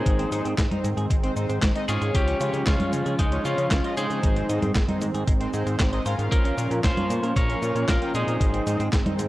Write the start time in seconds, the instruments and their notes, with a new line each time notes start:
Already playing: analog polysynth G#3 C4 D#4 C5, lead electric guitar D#4 G#4
0.06 analog synth bass G#1, analog synth pad D#3 G#3 C4, clean electric guitar G#3, kick, closed hi-hat, cabasa
0.19 clean electric guitar C4, closed hi-hat
0.32 analog synth bass G#2, analog polysynth G#3 C4 D#4 C5, clean electric guitar D#4, closed hi-hat, cabasa
0.45 analog synth bass G#2, clean electric guitar C4, closed hi-hat, cabasa
0.58 analog synth bass G#1, clean electric guitar G#3, kick, snare, clap, closed hi-hat, cabasa
0.71 analog polysynth G#3 C4 D#4 C5, clean electric guitar D#4, closed hi-hat, high conga
0.84 analog synth bass G#2, clean electric guitar G#3, closed hi-hat, cabasa
0.97 analog synth bass G#2, clean electric guitar G#4, closed hi-hat, cabasa
1.10 analog synth bass G#1, clean electric guitar G#3, kick, closed hi-hat, cabasa
1.23 analog polysynth G#3 C4 D#4 C5, clean electric guitar C4, closed hi-hat
1.36 analog synth bass G#2, analog polysynth G#3 C4 D#4 C5, clean electric guitar D#4, closed hi-hat, cabasa
1.49 analog synth bass G#2, clean electric guitar C4, closed hi-hat, cabasa
1.62 analog synth bass G#1, clean electric guitar G#3, kick, snare, clap, closed hi-hat, cabasa
1.76 analog polysynth G#3 C4 D#4 D#5, clean electric guitar D#4, closed hi-hat
1.88 analog synth bass G#2, clean electric guitar G#3, analog polysynth G#3 C#4 F4 C#5, lead electric guitar F4 G#4, closed hi-hat, cabasa
2.01 analog synth bass G#2, clean electric guitar G#4, closed hi-hat, cabasa
2.15 analog synth bass C#2, analog synth pad F3 C#4, clean electric guitar G#3, lead electric guitar C#4 G4, kick, closed hi-hat, cabasa
2.28 clean electric guitar C#4, closed hi-hat
2.40 analog synth bass C#3, analog polysynth G#3 C#4 F4 C#5, clean electric guitar F4, closed hi-hat, cabasa
2.54 analog synth bass C#3, clean electric guitar C#4, closed hi-hat, cabasa
2.67 analog synth bass C#2, clean electric guitar G#3, lead electric guitar C#4 F4, kick, snare, clap, closed hi-hat, cabasa
2.80 analog polysynth G#3 C#4 F4 C#5, clean electric guitar F4, closed hi-hat, high conga
2.93 analog synth bass C#3, clean electric guitar G#3, closed hi-hat, cabasa
3.06 analog synth bass C#3, clean electric guitar G#4, closed hi-hat, cabasa
3.19 analog synth bass C#2, clean electric guitar G#3, lead electric guitar G#3 D#4, kick, closed hi-hat, cabasa
3.32 analog polysynth G#3 C#4 F4 C#5, clean electric guitar C#4, closed hi-hat
3.45 analog synth bass C#3, analog polysynth G#3 C#4 F4 C#5, lead electric guitar C#4 F4, clean electric guitar F4, closed hi-hat, cabasa
3.58 analog synth bass C#3, clean electric guitar C#4, closed hi-hat, cabasa
3.71 analog synth bass C#2, clean electric guitar G#3, kick, snare, clap, closed hi-hat, cabasa
3.84 analog polysynth G#3 C#4 F4 D#5, clean electric guitar F4, closed hi-hat
3.97 analog synth bass C#3, analog polysynth G#3 C4 D#4 C5, clean electric guitar G#3, lead electric guitar D#4 G#4, closed hi-hat, cabasa
4.10 analog synth bass C#3, clean electric guitar G#4, closed hi-hat, cabasa
4.23 analog synth bass G#1, analog synth pad D#3 C4, clean electric guitar G#3, kick, closed hi-hat, cabasa
4.36 clean electric guitar C4, closed hi-hat
4.49 analog synth bass G#2, analog polysynth G#3 C4 D#4 C5, clean electric guitar D#4, closed hi-hat, cabasa
4.62 analog synth bass G#2, clean electric guitar C4, closed hi-hat, high conga, cabasa
4.75 analog synth bass G#1, clean electric guitar G#3, kick, snare, clap, closed hi-hat, cabasa
4.88 analog polysynth G#3 C4 D#4 C5, clean electric guitar D#4, closed hi-hat, high conga
5.01 analog synth bass G#2, clean electric guitar G#3, closed hi-hat, cabasa
5.14 analog synth bass G#2, clean electric guitar G#4, closed hi-hat, cabasa
5.27 analog synth bass G#1, clean electric guitar G#3, kick, closed hi-hat, cabasa
5.41 analog polysynth G#3 C4 D#4 C5, clean electric guitar C4, closed hi-hat
5.54 analog synth bass G#2, analog polysynth G#3 C4 D#4 C5, clean electric guitar G#3, closed hi-hat, cabasa
5.66 analog synth bass G#2, clean electric guitar C4, closed hi-hat, cabasa
5.80 analog synth bass G#1, clean electric guitar C4, kick, snare, clap, closed hi-hat, cabasa
5.93 analog polysynth G#3 C4 D#4 D#5, clean electric guitar C5, closed hi-hat
6.05 analog synth bass G#2, analog polysynth C#4 F4 A#4 F5, clean electric guitar C5, closed hi-hat, cabasa
6.19 analog synth bass G#2, clean electric guitar G#3, closed hi-hat, cabasa
6.32 analog synth bass A#1, analog synth pad F3 A#3 C#4, clean electric guitar A#3, lead electric guitar F4 A#4, kick, closed hi-hat, cabasa
6.45 clean electric guitar C#4, closed hi-hat
6.58 analog synth bass A#2, analog polysynth C#4 F4 A#4 F5, clean electric guitar F4, closed hi-hat, cabasa
6.71 analog synth bass A#2, clean electric guitar C#4, closed hi-hat, cabasa
6.84 analog synth bass A#1, clean electric guitar A#3, lead electric guitar F4 C5, kick, snare, clap, closed hi-hat, cabasa
6.97 analog polysynth C#4 F4 A#4 F5, clean electric guitar F4, closed hi-hat, high conga
7.10 analog synth bass A#2, clean electric guitar A#3, closed hi-hat, cabasa
7.23 analog synth bass A#2, clean electric guitar A#4, closed hi-hat, cabasa
7.36 analog synth bass A#1, clean electric guitar A#3, lead electric guitar A#4 C#5, kick, closed hi-hat, cabasa
7.49 analog polysynth C#4 F4 A#4 F5, clean electric guitar C#4, closed hi-hat
7.62 analog synth bass A#2, analog polysynth C#4 F4 A#4 F5, clean electric guitar F4, closed hi-hat, cabasa
7.75 analog synth bass A#2, clean electric guitar C#4, closed hi-hat, cabasa
7.88 analog synth bass A#1, clean electric guitar A#3, lead electric guitar F4 A#4, kick, snare, clap, closed hi-hat, cabasa
8.02 analog polysynth C#4 F4 A#4 G5, clean electric guitar F4, closed hi-hat
8.14 analog synth bass A#2, analog polysynth G#3 C4 D#4 C5, clean electric guitar A#3, lead electric guitar D#4 G#4, closed hi-hat, cabasa
8.27 analog synth bass A#2, clean electric guitar A#4, closed hi-hat, cabasa
8.40 analog synth bass G#1, analog synth pad D#3 G#3 C4, clean electric guitar G#3, kick, closed hi-hat, cabasa
8.54 clean electric guitar C4, closed hi-hat
8.67 analog synth bass G#2, analog polysynth G#3 C4 D#4 C5, clean electric guitar D#4, closed hi-hat, cabasa
8.80 analog synth bass G#2, clean electric guitar C4, closed hi-hat, cabasa
8.93 analog synth bass G#1, clean electric guitar G#3, kick, snare, clap, closed hi-hat, cabasa
9.06 analog polysynth G#3 C4 D#4 C5, clean electric guitar D#4, closed hi-hat, high conga
9.19 analog synth bass G#2, clean electric guitar G#3, closed hi-hat, cabasa